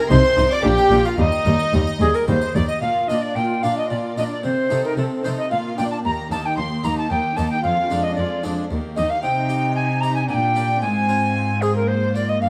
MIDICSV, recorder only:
0, 0, Header, 1, 2, 480
1, 0, Start_track
1, 0, Tempo, 542005
1, 1051, Time_signature, 3, 2, 24, 8
1, 3935, Tempo, 531444
1, 11203, End_track
2, 0, Start_track
2, 0, Title_t, "Recorder"
2, 0, Program_c, 0, 74
2, 83, Note_on_c, 0, 72, 91
2, 437, Note_off_c, 0, 72, 0
2, 455, Note_on_c, 0, 74, 88
2, 562, Note_off_c, 0, 74, 0
2, 567, Note_on_c, 0, 67, 84
2, 933, Note_on_c, 0, 65, 65
2, 946, Note_off_c, 0, 67, 0
2, 1053, Note_off_c, 0, 65, 0
2, 1058, Note_on_c, 0, 75, 77
2, 1534, Note_off_c, 0, 75, 0
2, 1770, Note_on_c, 0, 68, 68
2, 1904, Note_on_c, 0, 70, 60
2, 1917, Note_off_c, 0, 68, 0
2, 2015, Note_off_c, 0, 70, 0
2, 2020, Note_on_c, 0, 72, 75
2, 2260, Note_on_c, 0, 74, 69
2, 2273, Note_off_c, 0, 72, 0
2, 2363, Note_off_c, 0, 74, 0
2, 2369, Note_on_c, 0, 75, 63
2, 2487, Note_off_c, 0, 75, 0
2, 2492, Note_on_c, 0, 77, 60
2, 2727, Note_on_c, 0, 75, 53
2, 2740, Note_off_c, 0, 77, 0
2, 2856, Note_on_c, 0, 74, 49
2, 2869, Note_off_c, 0, 75, 0
2, 2968, Note_on_c, 0, 79, 58
2, 2982, Note_off_c, 0, 74, 0
2, 3212, Note_on_c, 0, 77, 50
2, 3225, Note_off_c, 0, 79, 0
2, 3336, Note_off_c, 0, 77, 0
2, 3340, Note_on_c, 0, 75, 53
2, 3445, Note_off_c, 0, 75, 0
2, 3450, Note_on_c, 0, 74, 52
2, 3505, Note_off_c, 0, 74, 0
2, 3694, Note_on_c, 0, 75, 53
2, 3747, Note_off_c, 0, 75, 0
2, 3817, Note_on_c, 0, 74, 45
2, 3924, Note_off_c, 0, 74, 0
2, 3930, Note_on_c, 0, 72, 61
2, 4288, Note_off_c, 0, 72, 0
2, 4306, Note_on_c, 0, 70, 51
2, 4404, Note_off_c, 0, 70, 0
2, 4409, Note_on_c, 0, 69, 54
2, 4465, Note_off_c, 0, 69, 0
2, 4644, Note_on_c, 0, 72, 50
2, 4698, Note_off_c, 0, 72, 0
2, 4781, Note_on_c, 0, 75, 51
2, 4891, Note_off_c, 0, 75, 0
2, 4897, Note_on_c, 0, 77, 57
2, 4951, Note_off_c, 0, 77, 0
2, 5140, Note_on_c, 0, 79, 60
2, 5194, Note_off_c, 0, 79, 0
2, 5265, Note_on_c, 0, 81, 50
2, 5318, Note_off_c, 0, 81, 0
2, 5387, Note_on_c, 0, 82, 70
2, 5441, Note_off_c, 0, 82, 0
2, 5625, Note_on_c, 0, 81, 59
2, 5753, Note_on_c, 0, 79, 56
2, 5766, Note_off_c, 0, 81, 0
2, 5849, Note_off_c, 0, 79, 0
2, 5855, Note_on_c, 0, 84, 70
2, 6106, Note_on_c, 0, 82, 58
2, 6119, Note_off_c, 0, 84, 0
2, 6217, Note_off_c, 0, 82, 0
2, 6223, Note_on_c, 0, 81, 60
2, 6337, Note_off_c, 0, 81, 0
2, 6342, Note_on_c, 0, 79, 64
2, 6573, Note_on_c, 0, 81, 62
2, 6587, Note_off_c, 0, 79, 0
2, 6693, Note_off_c, 0, 81, 0
2, 6699, Note_on_c, 0, 79, 57
2, 6807, Note_off_c, 0, 79, 0
2, 6812, Note_on_c, 0, 77, 72
2, 7176, Note_on_c, 0, 75, 58
2, 7190, Note_off_c, 0, 77, 0
2, 7277, Note_off_c, 0, 75, 0
2, 7282, Note_on_c, 0, 74, 62
2, 7528, Note_off_c, 0, 74, 0
2, 8013, Note_on_c, 0, 75, 61
2, 8139, Note_on_c, 0, 77, 59
2, 8153, Note_off_c, 0, 75, 0
2, 8247, Note_off_c, 0, 77, 0
2, 8252, Note_on_c, 0, 79, 71
2, 8724, Note_off_c, 0, 79, 0
2, 8728, Note_on_c, 0, 80, 72
2, 8960, Note_on_c, 0, 82, 71
2, 8973, Note_off_c, 0, 80, 0
2, 9080, Note_off_c, 0, 82, 0
2, 9085, Note_on_c, 0, 80, 70
2, 9208, Note_off_c, 0, 80, 0
2, 9215, Note_on_c, 0, 80, 62
2, 9259, Note_on_c, 0, 79, 67
2, 9268, Note_off_c, 0, 80, 0
2, 9683, Note_off_c, 0, 79, 0
2, 9689, Note_on_c, 0, 80, 78
2, 10415, Note_on_c, 0, 68, 62
2, 10428, Note_off_c, 0, 80, 0
2, 10534, Note_off_c, 0, 68, 0
2, 10543, Note_on_c, 0, 70, 59
2, 10650, Note_on_c, 0, 72, 67
2, 10664, Note_off_c, 0, 70, 0
2, 10893, Note_off_c, 0, 72, 0
2, 10900, Note_on_c, 0, 74, 59
2, 11023, Note_on_c, 0, 75, 54
2, 11036, Note_off_c, 0, 74, 0
2, 11130, Note_off_c, 0, 75, 0
2, 11136, Note_on_c, 0, 77, 70
2, 11203, Note_off_c, 0, 77, 0
2, 11203, End_track
0, 0, End_of_file